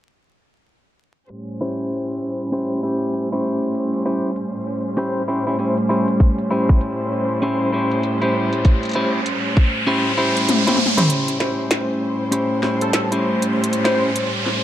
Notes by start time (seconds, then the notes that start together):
1.29 A2 G3 C#4 C5, closed hi-hat
1.49 closed hi-hat
1.61 C#4 E4 G4 C5
1.91 closed hi-hat
2.52 C#4 E4 G4 C5, closed hi-hat
2.83 C#4 E4 G4 C5
3.02 closed hi-hat
3.14 closed hi-hat
3.32 C#4 E4 G4 C5, closed hi-hat
3.63 closed hi-hat
3.75 closed hi-hat
3.94 closed hi-hat
4.05 C#4 E4 G4 C5
4.36 closed hi-hat
4.97 C#4 E4 G4 C5, closed hi-hat
5.28 C#4 E4 G4 C5
5.47 C#4 E4 G4 C5, closed hi-hat
5.59 C#4 E4 G4 C5, closed hi-hat
5.78 closed hi-hat
5.89 C#4 E4 G4 C5
6.08 closed hi-hat
6.20 kick, closed hi-hat, riser
6.39 closed hi-hat
6.51 C#4 E4 G4 C5
6.69 kick
6.81 closed hi-hat
7.42 C#4 E4 G4 C5, closed hi-hat
7.72 C#4 E4 G4 C5
7.92 closed hi-hat
8.03 closed hi-hat
8.22 C#4 E4 G4 C5, closed hi-hat
8.53 closed hi-hat
8.65 kick, closed hi-hat
8.83 closed hi-hat
8.85 closed hi-hat
8.89 closed hi-hat
8.91 closed hi-hat
8.93 C#4 E4 G4 C5, closed hi-hat
9.26 closed hi-hat
9.57 kick
9.87 C#4 E4 G4 C5
10.18 C#4 E4 G4 C5
10.37 closed hi-hat
10.49 closed hi-hat, high tom
10.67 C#4 E4 G4 C5, closed hi-hat, high tom
10.76 high tom
10.86 high tom
10.97 C#4 E4 G4 C5, closed hi-hat, mid tom
11.10 A2 G3 C#4 C5, closed hi-hat, riser
11.28 closed hi-hat
11.40 C#4 E4 G4 C5, snare
11.71 snare, closed hi-hat
12.31 C#4 E4 G4 C5, closed hi-hat
12.62 C#4 E4 G4 C5, snare
12.81 A4, closed hi-hat
12.93 A4, snare, closed hi-hat
13.12 C#4 E4 G4 C5, closed hi-hat
13.42 closed hi-hat
13.64 closed hi-hat
13.73 closed hi-hat
13.85 C#4 E4 G4 C5, snare
14.16 closed hi-hat
14.46 snare